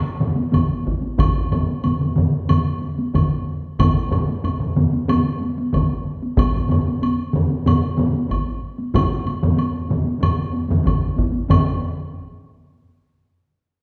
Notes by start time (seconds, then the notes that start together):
0.20 taiko low-mid, taiko mid, taiko high
0.36 taiko high
0.52 taiko, taiko low-mid, taiko mid, taiko high, high woodblock
0.85 taiko, taiko high
1.01 taiko high
1.18 taiko, taiko low-mid, taiko mid, taiko high, high woodblock
1.51 taiko low-mid, taiko mid, taiko high, high woodblock
1.67 taiko high
1.84 taiko low-mid, taiko mid, taiko high, high woodblock
2.01 taiko low-mid, taiko mid
2.17 taiko low-mid, taiko mid, taiko high
2.49 taiko low-mid, taiko mid, taiko high, high woodblock
2.82 taiko high
2.99 taiko high
3.14 taiko, taiko low-mid, taiko mid, taiko high, high woodblock
3.79 taiko, taiko low-mid, taiko mid, taiko high, high woodblock
4.11 taiko low-mid, taiko mid, taiko high, high woodblock
4.29 taiko high
4.44 taiko low-mid, taiko mid, taiko high, high woodblock
4.60 taiko low-mid, taiko mid
4.76 taiko low-mid, taiko mid, taiko high
4.93 taiko high
5.08 taiko low-mid, taiko mid, taiko high, high woodblock
5.41 taiko high
5.58 taiko high
5.73 taiko, taiko low-mid, taiko mid, taiko high, high woodblock
6.22 taiko high
6.37 taiko, taiko low-mid, taiko mid, taiko high, high woodblock
6.53 taiko low-mid, taiko mid
6.69 taiko low-mid, taiko mid, taiko high, high woodblock
6.86 taiko high
7.02 taiko high, high woodblock
7.33 taiko low-mid, taiko mid, taiko high
7.50 taiko high
7.66 taiko low-mid, taiko mid, taiko high, high woodblock
7.97 taiko low-mid, taiko mid, taiko high
8.13 taiko high
8.29 taiko, taiko high, high woodblock
8.78 taiko high
8.94 taiko, taiko low-mid, taiko mid, taiko high, high woodblock
9.27 taiko high, high woodblock
9.42 taiko low-mid, taiko mid, taiko high
9.57 taiko high, high woodblock
9.89 taiko low-mid, taiko mid, taiko high
10.04 taiko high
10.21 taiko low-mid, taiko mid, taiko high, high woodblock
10.53 taiko high
10.69 taiko low-mid, taiko mid, taiko high
10.84 taiko, taiko low-mid, taiko mid, taiko high, high woodblock
11.16 taiko, taiko high
11.32 taiko high
11.49 taiko, taiko low-mid, taiko mid, taiko high, high woodblock